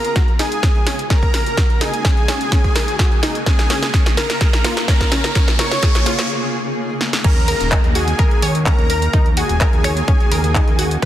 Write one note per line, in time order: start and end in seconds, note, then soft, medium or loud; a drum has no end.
0.00 7.20 C#3 medium
0.00 7.20 A#3 medium
0.00 3.43 D#4 medium
0.00 3.43 F#4 loud
0.00 0.30 A#4 loud
0.00 0.30 A#5 loud
0.00 riser medium
0.05 closed hi-hat soft
0.16 0.21 F#4 medium
0.16 kick loud
0.16 snare medium
0.16 closed hi-hat soft
0.28 closed hi-hat soft
0.39 0.47 D#4 loud
0.39 1.01 G#4 loud
0.39 1.01 G#5 medium
0.39 snare medium
0.39 open hi-hat loud
0.52 closed hi-hat medium
0.63 0.68 C#4 medium
0.63 kick loud
0.63 snare medium
0.63 closed hi-hat medium
0.76 closed hi-hat soft
0.87 0.91 C#4 loud
0.87 snare medium
0.87 open hi-hat loud
0.99 closed hi-hat soft
1.10 1.15 C#4 loud
1.10 1.83 A#4 loud
1.10 1.81 A#5 loud
1.10 kick loud
1.10 snare medium
1.10 closed hi-hat soft
1.23 kick medium
1.23 closed hi-hat soft
1.34 1.39 A#4 medium
1.34 snare medium
1.34 open hi-hat loud
1.46 closed hi-hat soft
1.57 1.62 F#4 medium
1.57 kick loud
1.57 snare medium
1.57 closed hi-hat soft
1.70 closed hi-hat soft
1.81 1.88 D#4 loud
1.81 3.38 G#4 loud
1.81 3.38 G#5 loud
1.81 snare medium
1.81 open hi-hat loud
1.94 closed hi-hat soft
2.05 2.10 C#4 medium
2.05 kick loud
2.05 snare medium
2.05 closed hi-hat medium
2.17 closed hi-hat soft
2.28 2.33 C#4 loud
2.28 snare medium
2.28 open hi-hat loud
2.41 closed hi-hat medium
2.52 2.57 C#4 loud
2.52 kick loud
2.52 snare medium
2.52 closed hi-hat medium
2.64 kick medium
2.64 closed hi-hat soft
2.76 2.80 A#4 medium
2.76 snare medium
2.76 open hi-hat loud
2.88 closed hi-hat soft
2.99 3.04 F#4 medium
2.99 kick loud
2.99 snare medium
2.99 closed hi-hat medium
3.12 closed hi-hat soft
3.23 3.30 D#4 loud
3.23 snare medium
3.23 open hi-hat loud
3.35 closed hi-hat medium
3.46 3.51 C#4 medium
3.46 5.34 F4 medium
3.46 4.08 G#4 loud
3.46 7.21 G#4 loud
3.46 4.08 G#5 loud
3.46 kick loud
3.46 snare medium
3.46 closed hi-hat medium
3.59 snare medium
3.59 closed hi-hat soft
3.70 3.75 C#4 loud
3.70 snare loud
3.70 open hi-hat loud
3.83 snare medium
3.83 closed hi-hat medium
3.94 3.99 C#4 loud
3.94 kick loud
3.94 snare medium
3.94 closed hi-hat medium
4.06 snare medium
4.06 closed hi-hat soft
4.17 4.79 A#4 loud
4.17 4.22 A#4 medium
4.17 4.79 A#5 loud
4.17 snare medium
4.17 open hi-hat loud
4.30 snare medium
4.30 closed hi-hat medium
4.41 4.46 G#4 medium
4.41 kick loud
4.41 snare loud
4.41 closed hi-hat medium
4.53 snare medium
4.53 closed hi-hat soft
4.64 4.72 F4 loud
4.64 snare loud
4.64 open hi-hat loud
4.77 snare medium
4.77 closed hi-hat medium
4.88 4.93 C#4 medium
4.88 5.50 A#4 loud
4.88 5.50 A#5 loud
4.88 kick loud
4.88 snare loud
4.88 closed hi-hat medium
5.01 kick medium
5.01 snare medium
5.01 closed hi-hat soft
5.12 5.17 C#4 loud
5.12 snare loud
5.12 open hi-hat loud
5.24 snare medium
5.24 closed hi-hat medium
5.35 5.40 C#4 loud
5.35 7.22 D#4 medium
5.35 kick loud
5.35 snare loud
5.35 closed hi-hat medium
5.48 snare medium
5.48 closed hi-hat soft
5.59 5.64 A#4 medium
5.59 6.30 C#5 loud
5.59 6.30 C#6 loud
5.59 snare loud
5.59 open hi-hat loud
5.71 snare medium
5.71 closed hi-hat medium
5.83 5.88 G#4 medium
5.83 kick loud
5.83 snare loud
5.83 closed hi-hat medium
5.95 snare medium
5.95 closed hi-hat soft
6.06 6.14 F4 loud
6.06 snare loud
6.06 open hi-hat loud
6.19 snare medium
6.19 closed hi-hat medium
7.01 snare medium
7.13 snare medium
7.24 7.55 D#2 loud
7.24 11.05 C#3 medium
7.24 10.99 A#3 medium
7.24 7.32 C#4 medium
7.24 10.99 D#4 medium
7.24 10.99 F#4 loud
7.24 7.86 A#4 loud
7.24 7.32 C#5 medium
7.24 7.86 A#5 loud
7.24 kick loud
7.24 closed hi-hat medium
7.24 crash loud
7.24 downlifter medium
7.37 closed hi-hat soft
7.48 7.55 A#4 medium
7.48 7.55 A#5 medium
7.48 open hi-hat loud
7.60 7.77 D#1 medium
7.60 closed hi-hat medium
7.72 7.79 D#4 medium
7.72 7.79 D#5 medium
7.72 kick loud
7.72 clap loud
7.72 closed hi-hat medium
7.84 8.14 D#2 loud
7.84 closed hi-hat soft
7.95 7.98 F#4 medium
7.95 8.57 G#4 loud
7.95 7.98 F#5 medium
7.95 8.57 G#5 loud
7.95 open hi-hat loud
8.08 closed hi-hat medium
8.19 8.28 D#2 medium
8.19 8.26 A#4 loud
8.19 8.26 A#5 medium
8.19 kick loud
8.19 closed hi-hat medium
8.31 closed hi-hat soft
8.42 8.73 D#2 loud
8.42 8.47 C#5 loud
8.42 8.47 C#6 medium
8.42 open hi-hat loud
8.55 closed hi-hat medium
8.66 8.73 C#4 medium
8.66 9.28 A#4 loud
8.66 8.73 C#5 medium
8.66 9.28 A#5 loud
8.66 kick loud
8.66 clap loud
8.66 closed hi-hat medium
8.79 9.08 D#2 medium
8.79 closed hi-hat soft
8.90 8.97 A#4 medium
8.90 8.97 A#5 medium
8.90 open hi-hat loud
9.02 closed hi-hat medium
9.13 9.44 D#2 loud
9.13 9.21 D#4 medium
9.13 9.21 D#5 medium
9.13 kick loud
9.13 closed hi-hat medium
9.26 closed hi-hat soft
9.37 9.40 F#4 medium
9.37 10.93 G#4 loud
9.37 9.40 F#5 medium
9.37 10.94 G#5 loud
9.37 open hi-hat loud
9.49 9.66 D#1 medium
9.49 closed hi-hat medium
9.61 9.68 A#4 loud
9.61 9.68 A#5 medium
9.61 kick loud
9.61 clap loud
9.61 closed hi-hat medium
9.73 10.03 D#2 loud
9.73 closed hi-hat soft
9.84 9.89 C#5 loud
9.84 9.89 C#6 medium
9.84 finger snap medium
9.84 open hi-hat loud
9.97 closed hi-hat medium
10.08 10.17 D#2 medium
10.08 10.15 C#4 medium
10.08 10.15 C#5 medium
10.08 kick loud
10.08 closed hi-hat medium
10.20 closed hi-hat soft
10.32 10.62 D#2 loud
10.32 10.39 A#4 medium
10.32 10.39 A#5 medium
10.32 open hi-hat loud
10.44 closed hi-hat medium
10.55 10.62 D#4 medium
10.55 10.62 D#5 medium
10.55 kick loud
10.55 clap loud
10.55 closed hi-hat medium
10.68 10.97 D#2 medium
10.68 closed hi-hat soft
10.79 10.82 F#4 medium
10.79 10.82 F#5 medium
10.79 open hi-hat loud
10.91 closed hi-hat medium